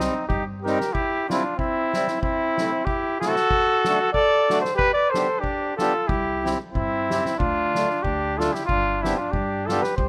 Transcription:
0.00 0.14 G3 medium
0.00 0.27 C4 medium
0.00 0.14 C4 soft
0.00 0.28 D#4 medium
0.00 0.14 D#4 medium
0.00 snare medium
0.27 0.72 G2 medium
0.27 0.43 D#4 medium
0.27 0.45 G4 medium
0.27 kick medium
0.62 0.78 G3 medium
0.62 0.79 C4 medium
0.62 0.79 D#4 medium
0.62 0.95 G4 medium
0.62 0.94 A#4 medium
0.62 snare soft
0.80 snare medium
0.93 1.28 E4 medium
0.93 1.29 G4 medium
0.93 kick medium
0.93 crash medium
1.28 1.43 G3 medium
1.28 1.43 C4 soft
1.28 1.56 D4 medium
1.28 1.43 E4 medium
1.28 1.56 F4 medium
1.28 snare medium
1.57 2.18 C4 medium
1.57 2.19 E4 medium
1.57 kick medium
1.93 2.07 G3 medium
1.93 2.07 C4 medium
1.93 2.07 E4 medium
1.93 snare medium
2.07 snare soft
2.20 2.88 C4 medium
2.20 2.86 E4 medium
2.20 kick medium
2.58 2.71 C3 medium
2.58 2.71 A3 medium
2.58 2.71 C4 soft
2.58 2.71 E4 medium
2.58 snare medium
2.85 3.19 E4 medium
2.85 3.20 G4 medium
2.85 kick medium
3.20 3.35 A3 medium
3.20 3.35 E4 medium
3.20 4.09 F#4 loud
3.20 4.10 A4 loud
3.20 snare medium
3.24 3.36 C3 medium
3.24 3.36 C4 soft
3.36 snare soft
3.51 kick medium
3.84 3.99 A3 medium
3.84 3.99 D4 soft
3.84 3.99 F#4 medium
3.84 snare medium
4.13 4.60 A4 medium
4.13 4.60 D5 loud
4.13 kick medium
4.50 4.63 A3 medium
4.50 4.63 D4 medium
4.50 4.63 F#4 medium
4.50 snare medium
4.61 4.74 A4 medium
4.61 4.76 C5 medium
4.61 snare soft
4.74 4.93 G4 medium
4.74 4.93 B4 loud
4.79 kick medium
4.93 5.14 B4 medium
4.93 5.11 D5 loud
5.10 5.41 A4 medium
5.10 5.41 C5 medium
5.14 5.28 B3 medium
5.14 5.28 D4 soft
5.14 5.28 G4 medium
5.14 snare medium
5.39 5.76 D4 medium
5.39 5.77 G4 medium
5.44 kick medium
5.77 5.93 B3 soft
5.77 5.93 D4 medium
5.77 6.08 F4 medium
5.77 5.93 G4 medium
5.77 6.09 A4 medium
5.77 snare medium
6.07 6.52 C2 medium
6.07 6.49 E4 medium
6.07 6.50 G4 medium
6.07 kick medium
6.44 6.58 C4 medium
6.44 6.58 E4 soft
6.44 6.58 G4 medium
6.44 snare medium
6.73 7.18 G2 medium
6.73 7.35 C4 medium
6.73 7.35 E4 medium
6.73 kick medium
7.10 7.24 C4 medium
7.10 7.24 E4 medium
7.10 7.24 G4 medium
7.10 snare medium
7.25 snare medium
7.38 7.82 D2 medium
7.38 8.03 D4 medium
7.38 8.04 F4 medium
7.38 kick medium
7.75 7.89 A3 medium
7.75 7.89 D4 soft
7.75 7.88 F4 medium
7.75 snare medium
7.90 snare soft
8.03 8.46 D2 medium
8.03 8.39 D4 medium
8.03 8.40 G4 medium
8.03 kick medium
8.38 8.53 A3 medium
8.38 8.53 D4 soft
8.38 8.53 F4 medium
8.38 8.54 A4 medium
8.38 snare medium
8.52 8.68 E4 medium
8.52 8.65 G4 medium
8.52 snare medium
8.65 9.11 G1 medium
8.65 9.06 D4 medium
8.65 9.04 F4 loud
8.65 kick medium
9.02 9.17 B3 medium
9.02 9.20 C4 medium
9.02 9.17 D4 medium
9.02 9.18 E4 medium
9.02 9.17 G4 medium
9.02 snare medium
9.16 9.33 D4 medium
9.16 9.32 F4 medium
9.31 9.75 G2 medium
9.31 9.69 D4 medium
9.31 9.68 G4 medium
9.31 kick medium
9.66 9.83 D4 medium
9.66 9.84 F4 medium
9.66 9.84 A4 medium
9.66 snare medium
9.70 9.83 B3 medium
9.70 9.83 G4 medium
9.82 9.96 G4 medium
9.82 9.96 B4 medium
9.82 snare medium
9.96 10.09 C2 medium
9.96 10.09 G4 medium
9.96 10.09 C5 medium
9.96 kick medium

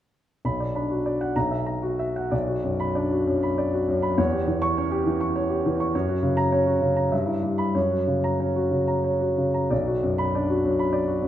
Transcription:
0.45 1.33 B1 soft
0.45 0.70 B5 soft
0.60 0.85 D5 soft
0.75 1.24 D4 soft
0.75 1.00 B5 soft
0.91 1.15 F#4 soft
1.06 1.30 D5 soft
1.21 1.36 F#5 soft
1.36 2.30 B1 soft
1.36 1.60 A#5 medium
1.51 1.76 E5 soft
1.66 1.92 A#5 soft
1.83 2.10 F#4 soft
1.99 2.26 E5 soft
2.16 2.33 F#5 soft
2.31 4.14 B1 soft
2.31 2.57 D5 soft
2.48 2.74 F#4 soft
2.64 2.90 F#2 soft
2.80 3.05 B5 medium
2.95 3.45 D4 soft
2.95 3.21 D5 soft
3.12 3.37 F#4 soft
3.27 3.52 F#2 soft
3.43 3.67 B5 soft
3.58 3.82 D5 soft
3.73 3.97 F#4 soft
3.88 4.12 F#2 soft
4.02 4.18 B5 soft
4.17 5.89 E2 medium
4.17 4.42 C#5 medium
4.32 4.56 G4 soft
4.47 4.95 E3 soft
4.62 4.86 C#6 medium
4.78 5.24 C#4 soft
4.78 5.01 C#5 medium
4.92 5.15 G4 medium
5.06 5.30 E3 medium
5.21 5.44 C#6 medium
5.35 5.59 C#5 soft
5.50 5.73 G4 soft
5.66 5.88 E3 soft
5.80 5.94 C#6 soft
5.95 7.09 F#2 medium
5.95 6.17 C#5 medium
6.08 6.31 F#4 soft
6.23 6.46 C#3 soft
6.37 6.60 A#5 medium
6.52 7.00 C#4 soft
6.52 6.76 C#5 soft
6.67 6.91 F#4 soft
6.82 7.06 C#3 soft
6.96 7.12 A#5 soft
7.12 7.73 G2 soft
7.12 7.37 E5 soft
7.26 7.52 E4 soft
7.43 7.69 G3 soft
7.58 7.75 B5 soft
7.75 9.67 F#2 soft
7.75 8.01 C#5 soft
7.91 8.17 F#4 soft
8.07 8.60 C#3 soft
8.24 8.50 A#5 soft
8.40 8.92 C#4 soft
8.40 8.66 C#5 soft
8.56 8.82 F#4 soft
8.71 8.98 C#3 soft
8.88 9.14 A#5 soft
9.04 9.31 C#5 soft
9.20 9.47 F#4 soft
9.37 9.64 C#3 soft
9.54 9.71 A#5 soft
9.70 11.28 B1 soft
9.70 9.96 D5 soft
9.87 10.12 F#4 soft
10.03 10.28 F#2 soft
10.18 10.43 B5 medium
10.35 10.82 D4 soft
10.35 10.59 D5 soft
10.50 10.73 F#4 soft
10.65 10.88 F#2 soft
10.79 11.02 B5 soft
10.93 11.16 D5 soft
11.07 11.28 F#4 soft
11.22 11.28 F#2 soft

